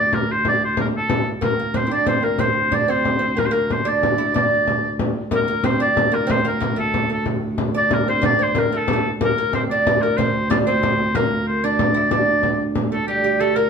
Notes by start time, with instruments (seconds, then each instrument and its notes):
Already playing: viola da gamba D2
0.00 oboe D5
0.13 oboe A#4, frame drum
0.32 oboe C5
0.45 oboe D5, frame drum
0.61 frame drum
0.65 oboe C5
0.77 oboe A#4, frame drum
0.97 oboe A4
1.10 frame drum
1.26 frame drum
1.41 viola da gamba D2, lute A#3, oboe A#4, frame drum
1.59 lute A#3, frame drum
1.74 lute C4, oboe C5, frame drum
1.87 lute E4
1.91 lute D4, oboe D5
2.06 lute C4, oboe C5, frame drum
2.22 lute A#3, oboe A#4
2.38 lute C4, oboe C5, frame drum
2.56 frame drum
2.72 lute D4, oboe D5, frame drum
2.88 lute C4, oboe C5
3.05 frame drum
3.19 lute C4
3.37 lute A#3, oboe A#4, frame drum
3.46 oboe C5
3.51 lute A#3, oboe A#4, frame drum
3.70 oboe C5, frame drum
3.85 lute D4, oboe D5
4.03 frame drum
4.18 lute E4
4.34 lute D4, oboe D5, frame drum
4.67 frame drum
4.84 frame drum
4.99 frame drum
5.16 frame drum
5.31 viola da gamba D2, lute A#3, oboe A#4, frame drum
5.48 lute A#3, frame drum
5.64 lute C4, oboe C5, frame drum
5.80 lute D4, oboe D5
5.97 frame drum
6.12 lute A#3, oboe A#4
6.27 lute C4, frame drum
6.31 oboe C5
6.45 lute A#3, oboe A#4, frame drum
6.60 lute A#3, frame drum
6.76 lute A3, oboe A4
6.94 frame drum
7.10 lute A3, oboe A4
7.26 frame drum
7.42 frame drum
7.58 frame drum
7.75 lute D4, oboe D5
7.91 oboe A#4, frame drum
8.08 lute C4, oboe C5
8.22 lute D4, oboe D5, frame drum
8.39 lute C4, oboe C5
8.55 lute A#3, frame drum
8.59 oboe A#4
8.72 lute A3, frame drum
8.77 oboe A4
8.88 frame drum
8.93 lute A3
9.05 frame drum
9.21 viola da gamba D2, lute A#3, oboe A#4, frame drum
9.37 lute A#3, frame drum
9.53 lute C4, oboe C5, frame drum
9.71 lute D4, oboe D5
9.87 frame drum
10.02 lute A#3, oboe A#4
10.18 lute C4, oboe C5, frame drum
10.35 frame drum
10.50 lute D4, oboe D5, frame drum
10.67 lute C4, oboe C5
10.83 frame drum
11.15 lute A#3, oboe A#4, frame drum
11.30 frame drum
11.48 oboe C5
11.64 lute D4, oboe D5
11.79 frame drum
11.94 lute E4
12.11 lute D4, oboe D5, frame drum
12.43 frame drum
12.60 frame drum
12.75 frame drum
12.92 lute A3, oboe A4
13.08 viola da gamba D2, lute G3, oboe G4
13.24 lute G3
13.40 lute A3, oboe A4
13.56 lute A#3, oboe A#4